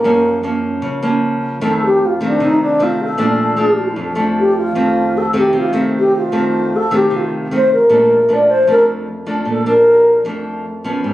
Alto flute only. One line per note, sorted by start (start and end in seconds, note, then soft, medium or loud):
0.00 0.41 A#3 medium
1.65 1.81 A4 medium
1.85 2.06 G4 medium
2.05 2.22 F4 medium
2.24 2.46 D4 medium
2.44 2.60 D#4 medium
2.61 2.84 D4 medium
2.82 3.00 F4 medium
3.03 3.95 A4 medium
4.39 4.56 G4 medium
4.57 5.18 F4 medium
5.17 5.35 A4 medium
5.37 5.59 G4 medium
5.57 5.75 F4 medium
5.98 6.14 G4 medium
6.16 6.77 F4 medium
6.75 6.93 A4 medium
6.95 7.17 G4 medium
7.15 7.33 F4 medium
7.55 7.71 C5 medium
7.72 8.35 A#4 medium
8.33 8.51 D5 medium
8.49 8.69 C5 loud
8.71 8.82 A#4 medium
9.49 9.66 A4 medium
9.66 10.21 A#4 medium